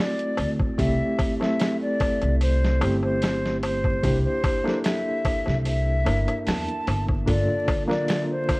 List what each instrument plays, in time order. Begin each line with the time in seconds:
Already playing: reed electric piano A3 C4 E4 F#4 A4
0.00 flute D5, snare
0.19 closed hi-hat
0.37 upright bass D2, open hi-hat, darbuka tek
0.60 kick, darbuka tek
0.78 upright bass C2, reed electric piano A3 C4 E4 G4, flute E5, kick, open hi-hat, darbuka tek
1.19 kick, open hi-hat, darbuka tek
1.40 reed electric piano A3 C4 E4 A4, flute E5, snare, darbuka tek
1.60 snare, open hi-hat, darbuka tek
1.82 flute D5
2.00 kick, open hi-hat, darbuka tek
2.22 upright bass C2, closed hi-hat, darbuka tek
2.41 flute C5, open hi-hat, darbuka tek
2.64 snare
2.81 upright bass G1, reed electric piano A3 C4 E4 G4, open hi-hat, darbuka tek
3.03 flute C5, darbuka tek
3.22 snare, open hi-hat, darbuka tek
3.46 snare
3.63 flute C5, open hi-hat, darbuka tek
3.84 kick, darbuka tek
4.03 upright bass C2, reed electric piano A#3 D4 E4 G4, kick, open hi-hat, darbuka tek
4.25 flute C5
4.44 kick, open hi-hat, darbuka tek
4.64 reed electric piano A#3 D4 E4 A4, snare, darbuka tek
4.84 flute E5, snare, open hi-hat, darbuka tek
5.25 kick, open hi-hat, darbuka tek
5.46 upright bass C2, snare, darbuka tek
5.65 flute E5, open hi-hat, darbuka tek
6.05 upright bass G1, reed electric piano A#3 D4 E4 A#4, open hi-hat, darbuka tek
6.28 closed hi-hat, darbuka tek
6.46 upright bass E2, flute A5, snare, open hi-hat, darbuka tek
6.68 closed hi-hat
6.87 upright bass G1, open hi-hat, darbuka tek
7.08 kick, darbuka tek
7.26 upright bass G1, ambient pad D3 E5, reed electric piano A#3 D4 F4 A4, flute D5, kick, open hi-hat, darbuka tek
7.68 kick, open hi-hat, darbuka tek
7.88 reed electric piano A#3 D4 F4 A#4, flute D5, snare, darbuka tek
8.08 snare, open hi-hat, darbuka tek
8.31 flute C5
8.49 kick, open hi-hat, darbuka tek